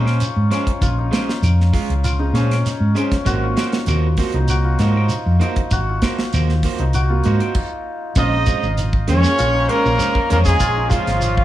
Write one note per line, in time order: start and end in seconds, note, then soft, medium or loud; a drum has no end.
0.00 0.19 A#2 medium
0.00 0.51 C#4 medium
0.00 0.98 D#4 medium
0.00 0.82 F4 medium
0.04 0.24 C#4 soft
0.04 0.24 F4 soft
0.04 0.23 C5 medium
0.04 snare soft
0.04 claves medium
0.20 closed hi-hat medium
0.20 shekere medium
0.36 0.50 G#2 medium
0.51 0.70 G#3 medium
0.51 0.70 C#4 medium
0.51 2.34 C#4 medium
0.51 0.71 F4 medium
0.51 0.70 C5 medium
0.51 snare soft
0.51 closed hi-hat medium
0.51 claves medium
0.51 shekere soft
0.66 muted fingered electric bass stroke soft
0.66 kick medium
0.66 closed hi-hat medium
0.81 1.09 A#1 medium
0.81 2.04 F4 medium
0.81 kick medium
0.81 closed hi-hat medium
0.81 shekere medium
0.98 2.19 D#4 medium
1.11 1.31 G#3 medium
1.11 1.31 C#4 medium
1.11 1.32 F4 medium
1.11 1.32 C5 medium
1.11 snare medium
1.11 closed hi-hat medium
1.11 claves medium
1.11 shekere soft
1.29 snare medium
1.42 1.70 F2 loud
1.42 closed hi-hat medium
1.42 claves medium
1.42 shekere medium
1.60 snare soft
1.73 1.93 G#3 medium
1.73 1.93 C#4 medium
1.73 1.93 F4 medium
1.73 kick medium
1.73 open hi-hat medium
1.73 shekere soft
1.90 2.31 C#2 medium
1.90 closed hi-hat medium
2.04 3.32 F4 medium
2.04 closed hi-hat medium
2.04 claves medium
2.04 shekere medium
2.19 2.59 C4 medium
2.19 2.59 C#4 medium
2.19 4.34 D#4 medium
2.19 2.60 G#4 medium
2.33 2.62 A#2 medium
2.33 2.54 G#3 medium
2.33 2.96 C#4 medium
2.33 2.54 C#4 medium
2.33 2.54 F4 medium
2.33 2.54 C5 medium
2.33 snare soft
2.33 closed hi-hat soft
2.33 shekere soft
2.51 snare soft
2.51 closed hi-hat medium
2.51 claves medium
2.66 snare soft
2.66 closed hi-hat medium
2.66 shekere medium
2.80 2.94 G#2 medium
2.95 3.15 G#3 medium
2.95 3.12 C4 medium
2.95 3.15 C#4 medium
2.95 6.83 C#4 medium
2.95 3.13 C#4 medium
2.95 3.13 G#4 medium
2.95 3.15 C5 medium
2.95 muted clean electric guitar stroke medium
2.95 closed hi-hat medium
2.95 claves medium
2.95 shekere soft
3.12 muted fingered electric bass stroke soft
3.12 kick medium
3.12 snare soft
3.12 closed hi-hat soft
3.25 3.54 G#1 medium
3.25 3.45 A#3 medium
3.25 3.59 A#3 medium
3.25 3.59 C4 medium
3.25 3.45 D#4 medium
3.25 3.49 F#4 loud
3.25 3.59 F#4 loud
3.25 3.46 C5 medium
3.25 muted clean electric guitar stroke medium
3.25 kick medium
3.25 closed hi-hat medium
3.25 shekere medium
3.43 4.56 F4 medium
3.56 3.76 A#3 medium
3.56 3.76 D#4 medium
3.56 3.76 F#4 medium
3.56 3.76 C5 medium
3.56 snare medium
3.56 closed hi-hat soft
3.56 claves medium
3.56 shekere soft
3.72 snare medium
3.72 closed hi-hat soft
3.86 4.15 D#2 medium
3.86 4.07 A#3 medium
3.86 3.96 C4 medium
3.86 4.07 D#4 medium
3.86 4.07 F#4 medium
3.86 3.97 F#4 loud
3.86 4.07 C5 medium
3.86 closed hi-hat medium
3.86 claves medium
3.86 shekere medium
4.04 4.12 C4 medium
4.04 4.13 F#4 medium
4.17 4.37 A#3 medium
4.17 4.82 A#3 medium
4.17 4.83 C4 medium
4.17 4.38 D#4 medium
4.17 4.38 F#4 medium
4.17 4.83 F#4 medium
4.17 4.38 C5 medium
4.17 kick medium
4.17 open hi-hat medium
4.17 shekere soft
4.33 4.75 C2 medium
4.33 4.80 D#4 medium
4.33 closed hi-hat soft
4.48 4.71 F#4 medium
4.48 closed hi-hat medium
4.48 claves medium
4.48 shekere medium
4.65 5.78 F4 medium
4.79 5.07 G#2 medium
4.79 4.96 A#3 medium
4.79 4.95 D#4 medium
4.79 5.41 D#4 medium
4.79 4.94 F#4 medium
4.79 4.94 C5 medium
4.79 snare soft
4.79 closed hi-hat medium
4.79 shekere soft
4.95 5.14 D#4 soft
4.95 5.14 F#4 soft
4.95 5.13 C5 soft
4.95 claves medium
5.09 closed hi-hat medium
5.09 shekere medium
5.26 5.40 F2 medium
5.40 5.59 A#3 medium
5.40 5.60 D#4 medium
5.40 6.80 D#4 medium
5.40 5.60 F#4 medium
5.40 5.60 C5 medium
5.40 closed hi-hat medium
5.40 claves medium
5.40 shekere soft
5.56 muted fingered electric bass stroke soft
5.56 kick medium
5.56 closed hi-hat soft
5.71 5.99 G#1 medium
5.71 5.95 F#4 medium
5.71 kick medium
5.71 closed hi-hat medium
5.71 shekere medium
5.89 7.00 F4 medium
6.02 6.22 A#3 medium
6.02 6.22 D#4 medium
6.02 6.22 F#4 medium
6.02 6.22 C5 medium
6.02 kick medium
6.02 snare medium
6.02 closed hi-hat medium
6.02 claves medium
6.02 shekere soft
6.19 snare medium
6.33 6.61 D#2 loud
6.33 6.52 A#3 medium
6.33 6.52 D#4 medium
6.33 6.53 F#4 medium
6.33 6.53 C5 medium
6.33 closed hi-hat medium
6.33 claves medium
6.33 shekere medium
6.49 snare soft
6.63 6.83 A#3 medium
6.63 6.83 D#4 medium
6.63 6.83 F#4 medium
6.63 6.84 C5 medium
6.63 kick medium
6.63 open hi-hat medium
6.63 shekere soft
6.78 7.20 C2 medium
6.78 7.25 D#4 medium
6.78 closed hi-hat medium
6.93 7.16 F#4 medium
6.93 closed hi-hat medium
6.93 claves medium
6.93 shekere medium
7.10 7.50 A#3 medium
7.10 7.50 C4 medium
7.10 8.17 F4 medium
7.10 7.50 F#4 medium
7.24 7.39 G#2 medium
7.24 7.41 A#3 medium
7.24 8.32 D#4 medium
7.24 7.41 D#4 medium
7.24 7.40 F#4 medium
7.24 7.39 C5 medium
7.24 closed hi-hat medium
7.24 shekere soft
7.40 7.56 D#4 soft
7.40 7.56 F#4 soft
7.40 7.55 C5 medium
7.40 closed hi-hat medium
7.40 claves medium
7.55 kick medium
7.55 crash medium
8.15 8.43 A#1 loud
8.15 8.35 G#3 medium
8.15 8.64 C4 medium
8.15 8.64 C#4 medium
8.15 8.36 C#4 medium
8.15 8.75 D#4 medium
8.15 8.36 F4 medium
8.15 9.38 F4 medium
8.15 8.65 G#4 medium
8.15 8.36 C5 medium
8.15 8.74 D#5 loud
8.15 kick medium
8.15 closed hi-hat medium
8.15 shekere medium
8.32 9.54 D#4 medium
8.46 8.66 G#3 medium
8.46 8.66 C#4 medium
8.46 8.67 F4 medium
8.46 8.67 C5 medium
8.46 kick medium
8.46 closed hi-hat medium
8.46 shekere medium
8.63 9.10 G#1 medium
8.63 shekere soft
8.78 closed hi-hat medium
8.78 shekere medium
8.93 kick medium
9.08 9.23 F2 medium
9.08 9.27 G#3 medium
9.08 9.48 A#3 medium
9.08 9.48 C#4 medium
9.08 9.27 C#4 medium
9.08 9.72 C#4 loud
9.08 9.27 F4 medium
9.08 9.48 G#4 medium
9.08 9.27 C5 medium
9.08 9.70 C#5 loud
9.08 closed hi-hat medium
9.08 shekere soft
9.24 9.68 C#4 medium
9.24 muted fingered electric bass stroke soft
9.24 snare soft
9.24 shekere medium
9.38 9.67 A#1 loud
9.38 10.60 F4 medium
9.38 closed hi-hat medium
9.38 shekere medium
9.54 10.77 D#4 medium
9.68 9.88 G#3 medium
9.68 10.31 A#3 loud
9.68 10.29 C#4 medium
9.68 9.88 C#4 medium
9.68 9.88 F4 medium
9.68 10.30 A#4 loud
9.68 9.88 C5 medium
9.68 closed hi-hat medium
9.84 9.98 A#1 medium
9.84 10.24 C4 medium
9.84 10.24 C#4 medium
9.84 10.25 F4 medium
9.84 shekere soft
9.98 10.18 G#3 medium
9.98 10.18 C#4 medium
9.98 10.18 F4 medium
9.98 10.18 C5 medium
9.98 closed hi-hat medium
9.98 shekere medium
10.15 muted fingered electric bass stroke soft
10.15 kick medium
10.30 10.60 F2 medium
10.30 10.49 G#3 medium
10.30 10.39 A#3 medium
10.30 11.45 C#4 medium
10.30 10.49 C#4 medium
10.30 10.49 F4 medium
10.30 10.38 A#4 medium
10.30 10.49 C5 medium
10.30 closed hi-hat medium
10.30 shekere soft
10.45 10.96 G#3 medium
10.45 10.91 G#4 loud
10.45 kick medium
10.45 snare soft
10.45 closed hi-hat medium
10.45 shekere medium
10.59 10.88 A#1 medium
10.59 11.08 C4 medium
10.59 11.08 C#4 medium
10.59 11.45 F4 medium
10.59 11.09 G#4 medium
10.59 kick medium
10.59 closed hi-hat medium
10.59 shekere medium
10.77 11.45 D#4 medium
10.89 11.10 G#3 medium
10.89 11.10 C#4 medium
10.89 11.45 F4 medium
10.89 11.10 F4 medium
10.89 11.10 C5 medium
10.89 kick medium
10.89 closed hi-hat medium
10.89 shekere medium
10.94 11.45 F3 medium
11.07 11.45 G#1 medium
11.07 snare soft
11.07 closed hi-hat medium
11.07 shekere soft
11.21 closed hi-hat medium
11.21 shekere medium
11.37 kick medium